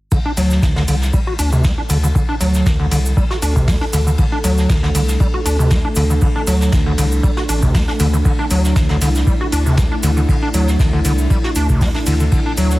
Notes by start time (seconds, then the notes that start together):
0.11 D3 A3 D4 A4, kick, ride, cabasa
0.25 D4
0.37 D2 F#3, open hi-hat, ride, cabasa
0.50 snare, cabasa
0.63 D2 D3, kick, snare, ride, cabasa
0.76 D3, snare
0.88 C2 D3, open hi-hat, ride, cabasa
1.02 snare, cabasa
1.13 G3, kick, ride, cabasa
1.27 F#4
1.39 D2 D4, open hi-hat, ride, cabasa
1.52 D2 C3, cabasa
1.64 A3, kick, snare, ride, cabasa
1.78 D4
1.90 D2 D3, open hi-hat, ride, cabasa
2.03 D3, cabasa
2.15 D3, kick, ride, cabasa
2.29 D4
2.40 D2 F#3, open hi-hat, ride, cabasa
2.54 snare, cabasa
2.66 D2 D3, kick, snare, ride, cabasa
2.80 D3
2.91 C2 D3, open hi-hat, ride, cabasa
3.06 cabasa
3.17 G3, kick, ride, cabasa
3.31 F#4, snare
3.42 D2 D4, open hi-hat, ride, cabasa
3.56 D2 C3, kick, cabasa
3.68 A3, kick, snare, open hi-hat, cabasa
3.81 D4, snare
3.93 D2 D3, open hi-hat, ride, cabasa
4.07 D3, cabasa
4.18 D3, kick, ride, cabasa
4.32 D4
4.44 D2 F#3, open hi-hat, ride, cabasa
4.58 snare, cabasa
4.69 D2 D3, kick, snare, ride, cabasa
4.83 D3, snare
4.95 C2 D3, open hi-hat, ride, cabasa
5.09 snare, cabasa
5.20 G3, kick, ride, cabasa
5.34 F#4
5.46 D2 D4, open hi-hat, ride, cabasa
5.59 D2 C3, cabasa
5.71 A3, kick, snare, ride, cabasa
5.85 D4
5.95 D2 D3, open hi-hat, ride, cabasa
6.10 D3, cabasa
6.21 D3, kick, ride, cabasa
6.36 D4
6.47 D2 F#3, open hi-hat, ride, cabasa
6.61 snare, cabasa
6.72 D2 D3, kick, snare, ride, cabasa
6.86 D3
6.98 C2 D3, open hi-hat, ride, cabasa
7.12 cabasa
7.23 G3, kick, ride, cabasa
7.37 F#4, snare
7.48 A1 D4, open hi-hat, ride, cabasa
7.62 D2 C3, kick, cabasa
7.74 A3, kick, snare, open hi-hat, cabasa
7.88 D4, snare
8.00 D2 D3, open hi-hat, ride, cabasa
8.13 D3, cabasa
8.25 D3 E4, kick, ride, cabasa
8.39 D4
8.50 D2 F#3, open hi-hat, ride, cabasa
8.64 snare, cabasa
8.76 D2 D3, kick, snare, ride, cabasa
8.89 D3, snare
9.01 C2 D3, open hi-hat, ride, cabasa
9.15 snare, cabasa
9.27 G3, kick, ride, cabasa
9.41 F#4
9.52 D2 D4, open hi-hat, ride, cabasa
9.66 D2 C3, cabasa
9.77 A3, kick, snare, ride, cabasa
9.92 D4
10.03 D2 D3, open hi-hat, ride, cabasa
10.17 D3, cabasa
10.29 D3, kick, ride, cabasa
10.42 D4
10.54 D2 F#3, open hi-hat, ride, cabasa
10.68 snare, cabasa
10.79 D2 D3, kick, snare, ride, cabasa
10.93 D3
11.05 C2 D3, open hi-hat, ride, cabasa
11.18 cabasa
11.30 G3, kick, ride, cabasa
11.44 F#4, snare
11.55 D2 D4, open hi-hat, ride, cabasa
11.69 D2 C3, kick, cabasa
11.81 A3, kick, snare, open hi-hat, cabasa
11.94 D4, snare
12.06 D2 D3, open hi-hat, ride, cabasa
12.20 D3, cabasa
12.32 D3, kick, ride, cabasa
12.46 D4
12.57 D2 F#3, open hi-hat, ride, cabasa
12.70 snare, cabasa